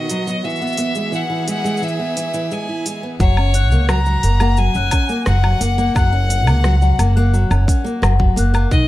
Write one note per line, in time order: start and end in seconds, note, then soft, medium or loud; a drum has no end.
0.00 0.43 B2 medium
0.00 3.19 B3 medium
0.00 1.54 F#4 medium
0.00 0.43 D#5 medium
0.00 0.46 D#5 medium
0.09 0.25 F#3 medium
0.09 open hi-hat medium
0.09 shaker medium
0.27 0.42 F#3 medium
0.27 shaker soft
0.44 3.20 E3 medium
0.44 0.60 E3 medium
0.44 1.17 E5 medium
0.44 shaker soft
0.50 shaker soft
0.56 shaker soft
0.61 0.77 B3 medium
0.61 shaker soft
0.67 shaker soft
0.73 shaker soft
0.77 0.94 B3 medium
0.77 open hi-hat medium
0.77 shaker medium
0.83 3.20 E5 medium
0.95 1.11 G#3 medium
0.95 shaker soft
1.08 3.20 G#4 medium
1.12 1.22 E3 medium
1.12 1.49 F#5 medium
1.12 shaker soft
1.30 1.45 E3 medium
1.48 1.63 G#3 medium
1.48 1.86 F#5 medium
1.48 open hi-hat medium
1.48 shaker medium
1.64 1.80 G#3 medium
1.64 shaker soft
1.77 shaker soft
1.82 1.97 E3 medium
1.82 2.54 E5 medium
1.82 shaker soft
1.88 shaker soft
1.99 2.15 B3 medium
2.17 2.33 E3 medium
2.17 open hi-hat medium
2.17 shaker medium
2.34 2.49 E3 medium
2.34 shaker soft
2.51 2.67 G#3 medium
2.51 3.03 G#5 medium
2.51 shaker soft
2.69 2.85 E4 medium
2.86 3.01 G#3 medium
2.86 open hi-hat medium
2.86 shaker medium
3.03 3.18 B3 medium
3.20 3.72 F#1 medium
3.20 3.36 F#3 medium
3.20 3.86 C#5 loud
3.20 3.37 F#5 medium
3.20 kick loud
3.20 shaker soft
3.37 3.53 C#4 medium
3.37 low woodblock medium
3.54 3.70 C#4 medium
3.54 3.71 F#6 medium
3.54 open hi-hat loud
3.54 shaker medium
3.72 4.17 C#2 loud
3.72 3.87 A#3 medium
3.72 shaker soft
3.89 3.99 F#3 medium
3.89 4.60 A#5 loud
3.89 cross-stick loud
3.89 low woodblock medium
3.89 shaker soft
4.06 4.22 F#3 medium
4.06 shaker soft
4.23 4.69 F#1 medium
4.23 4.39 A#3 medium
4.23 open hi-hat medium
4.23 shaker medium
4.40 4.56 A#3 loud
4.40 4.57 F#5 medium
4.40 low woodblock medium
4.40 shaker soft
4.57 4.73 F#3 medium
4.57 5.26 G#5 loud
4.57 shaker soft
4.74 4.89 F#1 medium
4.74 4.91 C#4 medium
4.74 4.92 F#6 medium
4.74 shaker soft
4.91 5.08 C#4 medium
4.91 kick loud
4.91 open hi-hat medium
4.91 low woodblock medium
4.91 shaker medium
5.09 5.25 A#3 medium
5.09 shaker soft
5.26 5.54 F#1 loud
5.26 5.36 F#3 medium
5.26 5.92 F#5 loud
5.26 cross-stick loud
5.26 shaker soft
5.43 5.59 F#3 medium
5.43 low woodblock medium
5.61 5.88 F#1 medium
5.61 5.76 A#3 medium
5.61 5.78 F#5 medium
5.61 open hi-hat medium
5.61 shaker medium
5.78 5.94 A#3 loud
5.78 shaker soft
5.95 6.47 F#1 loud
5.95 6.11 F#3 medium
5.95 7.29 F#5 loud
5.95 6.12 F#6 medium
5.95 kick loud
5.95 low woodblock medium
5.95 shaker soft
6.13 6.28 C#4 medium
6.30 6.45 C#4 medium
6.30 open hi-hat loud
6.30 shaker medium
6.47 6.93 C#2 loud
6.47 6.63 A#3 medium
6.47 low woodblock medium
6.47 shaker soft
6.64 6.74 F#3 medium
6.64 cross-stick loud
6.64 shaker soft
6.82 6.97 F#3 medium
6.82 6.98 F#5 medium
6.82 shaker soft
6.99 7.45 F#1 loud
6.99 7.14 A#3 medium
6.99 open hi-hat medium
6.99 low woodblock medium
6.99 shaker medium
7.16 7.32 A#3 loud
7.16 7.32 F#6 medium
7.16 shaker soft
7.33 7.49 F#3 medium
7.33 shaker soft
7.50 7.64 F#1 medium
7.50 7.66 C#4 medium
7.50 low woodblock medium
7.50 shaker soft
7.68 7.83 C#4 medium
7.68 kick loud
7.68 open hi-hat medium
7.68 shaker medium
7.84 8.00 A#3 medium
7.84 shaker soft
8.02 8.30 F#1 loud
8.02 8.12 F#3 medium
8.02 8.19 F#5 medium
8.02 cross-stick loud
8.02 low woodblock medium
8.02 shaker soft
8.19 8.35 F#3 medium
8.19 kick loud
8.36 8.64 F#1 medium
8.36 8.52 A#3 medium
8.36 8.54 F#6 medium
8.36 open hi-hat medium
8.36 shaker medium
8.54 8.69 A#3 loud
8.54 low woodblock medium
8.54 shaker soft
8.71 8.88 B1 medium
8.71 8.87 D#3 medium
8.71 8.88 D#5 loud
8.71 kick loud
8.71 shaker soft